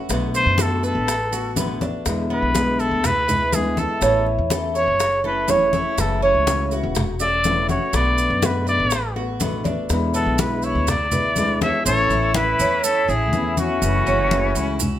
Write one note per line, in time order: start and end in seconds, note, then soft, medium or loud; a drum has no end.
0.09 0.45 B1 medium
0.09 0.57 B2 medium
0.09 0.58 D3 medium
0.09 0.58 A3 medium
0.09 0.58 B3 medium
0.09 0.58 F#4 medium
0.09 high bongo medium
0.09 high conga soft
0.09 maracas medium
0.34 0.63 C5 loud
0.34 high conga soft
0.34 maracas medium
0.46 0.93 F#2 medium
0.58 1.06 B2 medium
0.58 1.06 D3 medium
0.58 1.07 A3 medium
0.58 1.07 B3 medium
0.58 0.83 F#4 medium
0.58 1.07 F#4 medium
0.58 0.85 A4 medium
0.58 high bongo medium
0.58 high conga medium
0.58 maracas medium
0.83 1.54 A4 medium
0.83 1.31 B4 medium
0.83 high bongo soft
0.83 maracas soft
0.95 1.89 A1 medium
1.07 muted nylon-string guitar stroke medium
1.07 high bongo medium
1.07 high conga soft
1.07 maracas medium
1.31 1.56 A3 soft
1.31 1.56 B3 soft
1.31 1.55 F#4 soft
1.31 1.56 F#4 medium
1.31 high bongo soft
1.31 high conga soft
1.31 maracas medium
1.56 1.80 B2 medium
1.56 1.80 D3 medium
1.56 1.80 A3 medium
1.56 1.81 B3 medium
1.56 1.80 B3 medium
1.56 1.80 F#4 medium
1.56 high bongo soft
1.56 low bongo medium
1.56 high conga medium
1.56 maracas medium
1.81 2.06 A3 soft
1.81 2.05 B3 soft
1.81 2.29 D4 medium
1.81 2.05 F#4 medium
1.81 high bongo soft
1.81 high conga medium
1.81 maracas soft
2.06 2.41 E2 medium
2.06 2.53 B2 medium
2.06 2.54 D3 medium
2.06 2.54 G#3 medium
2.06 2.54 B3 medium
2.06 2.55 E4 medium
2.06 high bongo medium
2.06 high conga soft
2.06 maracas medium
2.30 2.78 B3 medium
2.30 2.82 B4 loud
2.30 high conga soft
2.42 2.89 B1 medium
2.55 3.02 B2 medium
2.55 3.03 D3 medium
2.55 3.03 G#3 medium
2.55 3.03 B3 medium
2.55 3.03 E4 medium
2.55 high bongo medium
2.55 high conga medium
2.55 maracas medium
2.79 3.27 E4 medium
2.79 3.08 A4 loud
2.79 high bongo soft
2.79 high conga soft
2.79 maracas soft
2.91 3.85 D2 medium
3.03 3.56 B4 loud
3.03 muted nylon-string guitar stroke medium
3.03 high bongo medium
3.03 high conga soft
3.03 low conga medium
3.03 maracas medium
3.28 3.52 G#3 soft
3.28 3.52 B3 soft
3.28 3.51 E4 soft
3.28 3.76 B4 medium
3.28 high bongo soft
3.28 high conga soft
3.28 low conga medium
3.28 maracas medium
3.52 3.76 B2 medium
3.52 3.77 D3 medium
3.52 3.77 G#3 medium
3.52 3.77 B3 medium
3.52 3.76 E4 medium
3.52 3.81 G#4 medium
3.52 high bongo soft
3.52 low bongo medium
3.52 high conga medium
3.52 maracas medium
3.77 4.01 G#3 soft
3.77 4.01 B3 soft
3.77 4.01 E4 medium
3.77 4.01 A4 medium
3.77 4.27 A4 medium
3.77 high bongo soft
3.77 high conga medium
3.77 maracas soft
4.01 4.36 A1 medium
4.01 4.49 E3 medium
4.01 4.49 A3 medium
4.01 4.50 C#4 medium
4.01 4.49 C#4 medium
4.01 4.50 E4 medium
4.01 high bongo medium
4.01 high conga soft
4.01 maracas medium
4.27 high conga soft
4.38 4.85 E2 medium
4.50 4.98 E3 medium
4.50 4.98 A3 medium
4.50 4.99 C#4 medium
4.50 4.99 E4 medium
4.50 4.74 A4 medium
4.50 high bongo medium
4.50 high conga medium
4.50 maracas medium
4.75 5.23 C#5 medium
4.75 5.21 C#5 loud
4.75 high bongo soft
4.75 maracas soft
4.88 5.81 F#1 medium
4.99 muted nylon-string guitar stroke medium
4.99 high bongo medium
4.99 high conga soft
4.99 maracas medium
5.24 5.47 A3 soft
5.24 5.48 C#4 soft
5.24 5.47 E4 medium
5.24 5.48 A4 medium
5.24 5.52 B4 medium
5.24 high bongo soft
5.24 high conga soft
5.48 5.72 E3 medium
5.48 5.72 A3 medium
5.48 5.72 C#4 medium
5.48 5.72 E4 medium
5.48 6.02 C#5 medium
5.48 high bongo soft
5.48 low bongo medium
5.48 high conga medium
5.48 maracas medium
5.73 5.97 A3 soft
5.73 5.97 C#4 soft
5.73 5.97 E4 soft
5.73 6.21 E4 medium
5.73 high bongo soft
5.73 high conga medium
5.73 maracas soft
5.98 6.32 F#1 medium
5.98 6.46 C#3 medium
5.98 6.46 E3 medium
5.98 6.46 A3 medium
5.98 6.46 C#4 medium
5.98 6.47 F#4 medium
5.98 6.23 A4 medium
5.98 high bongo medium
5.98 high conga soft
5.98 maracas medium
6.22 6.70 C#4 medium
6.22 6.68 C#5 medium
6.22 high conga soft
6.35 6.81 C#2 medium
6.47 6.95 C#3 medium
6.47 6.95 E3 medium
6.47 6.95 A3 medium
6.47 6.95 C#4 medium
6.47 6.95 F#4 medium
6.47 high bongo medium
6.47 high conga medium
6.47 maracas medium
6.71 7.19 F#4 medium
6.71 high bongo soft
6.71 high conga soft
6.71 maracas soft
6.83 7.77 E1 medium
6.95 muted nylon-string guitar stroke medium
6.95 high bongo medium
6.95 high conga soft
6.95 low conga medium
6.95 maracas medium
7.20 7.44 A3 soft
7.20 7.44 C#4 soft
7.20 7.44 F#4 soft
7.20 7.66 D5 loud
7.20 7.68 E5 medium
7.20 high bongo soft
7.20 high conga soft
7.20 maracas medium
7.44 7.68 C#3 medium
7.44 7.68 E3 medium
7.44 7.69 A3 medium
7.44 7.69 C#4 medium
7.44 7.68 F#4 medium
7.44 high bongo soft
7.44 low bongo medium
7.44 high conga medium
7.44 maracas medium
7.69 7.93 A3 soft
7.69 7.93 C#4 medium
7.69 7.93 F#4 medium
7.69 7.97 C#5 medium
7.69 high bongo soft
7.69 high conga medium
7.69 maracas soft
7.93 8.28 B1 medium
7.93 8.41 B2 medium
7.93 8.41 D3 medium
7.93 8.42 A3 medium
7.93 8.41 B3 medium
7.93 8.42 B3 medium
7.93 8.42 F#4 medium
7.93 8.47 D5 loud
7.93 high bongo medium
7.93 high conga soft
7.93 maracas medium
8.18 high conga soft
8.18 maracas medium
8.30 8.77 F#2 medium
8.42 8.90 B2 medium
8.42 8.90 D3 medium
8.42 8.91 A3 medium
8.42 8.91 B3 medium
8.42 8.66 F#4 medium
8.42 8.91 F#4 medium
8.42 8.68 B4 medium
8.42 high bongo medium
8.42 high conga medium
8.42 maracas medium
8.67 9.14 B4 medium
8.67 9.14 D5 loud
8.67 high bongo soft
8.67 maracas soft
8.80 9.74 A1 medium
8.90 muted nylon-string guitar stroke medium
8.90 high bongo medium
8.90 high conga soft
8.90 maracas medium
9.16 9.39 A3 soft
9.16 9.40 B3 soft
9.16 9.39 F#4 soft
9.16 9.40 F#4 medium
9.16 high bongo soft
9.16 high conga soft
9.40 9.64 B2 medium
9.40 9.64 D3 medium
9.40 9.64 A3 medium
9.40 9.64 B3 medium
9.40 9.64 F#4 medium
9.40 high bongo soft
9.40 low bongo medium
9.40 high conga medium
9.40 maracas medium
9.64 9.90 A3 soft
9.64 9.89 B3 soft
9.64 10.12 D4 medium
9.64 9.89 F#4 medium
9.64 high bongo soft
9.64 high conga medium
9.64 maracas soft
9.89 10.25 E2 medium
9.89 10.38 B2 medium
9.89 10.38 D3 medium
9.89 10.39 G#3 medium
9.89 10.39 B3 medium
9.89 10.39 E4 medium
9.89 high bongo medium
9.89 high conga soft
9.89 maracas medium
10.14 10.62 B3 medium
10.14 10.42 A4 loud
10.14 high conga soft
10.14 maracas medium
10.26 10.73 B1 medium
10.38 10.87 B2 medium
10.38 10.87 D3 medium
10.38 10.87 G#3 medium
10.38 10.87 B3 medium
10.38 10.88 E4 medium
10.38 10.66 B4 medium
10.38 high bongo medium
10.38 high conga loud
10.38 maracas medium
10.62 11.11 E4 medium
10.62 10.91 C#5 medium
10.62 high bongo soft
10.62 high conga soft
10.62 maracas soft
10.75 11.70 D2 medium
10.87 11.61 D5 loud
10.87 muted nylon-string guitar stroke medium
10.87 high bongo medium
10.87 high conga soft
10.87 low conga medium
10.87 maracas medium
11.12 11.37 G#3 soft
11.12 11.36 B3 soft
11.12 11.36 E4 soft
11.12 11.60 B4 medium
11.12 high bongo soft
11.12 high conga soft
11.12 low conga medium
11.12 maracas medium
11.36 11.61 B2 medium
11.36 11.61 D3 medium
11.36 11.61 G#3 medium
11.36 11.61 B3 medium
11.36 11.61 E4 medium
11.36 high bongo soft
11.36 low bongo medium
11.36 high conga medium
11.36 maracas medium
11.61 11.86 G#3 soft
11.61 11.86 B3 soft
11.61 11.85 E4 soft
11.61 11.85 A4 medium
11.61 11.84 C#5 medium
11.61 11.85 E5 medium
11.61 high bongo loud
11.61 high conga medium
11.61 maracas soft
11.85 12.09 A1 loud
11.85 12.34 E3 medium
11.85 12.35 A3 medium
11.85 12.10 C#4 medium
11.85 12.35 C#4 medium
11.85 12.35 E4 medium
11.85 12.31 A4 medium
11.85 12.32 C#5 loud
11.85 high conga soft
11.85 maracas medium
12.10 12.57 A1 medium
12.10 12.58 E4 medium
12.10 high conga soft
12.10 maracas soft
12.34 12.83 E3 medium
12.34 12.84 A3 medium
12.34 12.84 C#4 medium
12.34 12.84 E4 medium
12.34 12.86 B4 medium
12.34 high conga medium
12.34 maracas soft
12.58 13.06 E2 medium
12.58 13.08 C#4 medium
12.58 high conga soft
12.58 maracas medium
12.84 13.07 E4 medium
12.84 13.11 A4 loud
12.84 muted nylon-string guitar stroke medium
12.84 high conga soft
12.84 maracas medium
13.07 13.33 A1 medium
13.07 13.33 A3 soft
13.07 13.33 C#4 soft
13.07 13.57 E4 medium
13.07 13.32 E4 medium
13.07 13.56 E4 medium
13.07 13.58 G#4 medium
13.07 high conga soft
13.07 maracas soft
13.33 13.80 E2 medium
13.33 13.57 E3 medium
13.33 13.57 A3 medium
13.33 13.57 C#4 medium
13.33 13.57 E4 medium
13.33 high conga medium
13.33 maracas soft
13.57 13.82 A3 soft
13.57 14.99 C#4 medium
13.57 13.82 C#4 soft
13.57 13.82 E4 medium
13.57 14.06 F#4 medium
13.57 14.99 F#4 loud
13.57 high conga medium
13.57 maracas medium
13.82 14.05 F#1 loud
13.82 14.30 C#3 medium
13.82 14.30 E3 medium
13.82 14.31 A3 medium
13.82 14.31 C#4 medium
13.82 14.32 F#4 medium
13.82 high conga soft
13.82 maracas medium
14.06 14.53 F#1 loud
14.06 14.55 C#4 medium
14.06 high conga soft
14.06 maracas soft
14.31 14.79 C#3 medium
14.31 14.80 E3 medium
14.31 14.80 A3 medium
14.31 14.80 C#4 medium
14.31 14.80 F#4 medium
14.31 high conga medium
14.31 maracas soft
14.55 14.99 C#2 medium
14.55 14.99 E4 medium
14.55 high conga soft
14.55 maracas medium
14.80 muted nylon-string guitar stroke medium
14.80 high conga soft
14.80 low conga medium
14.80 maracas medium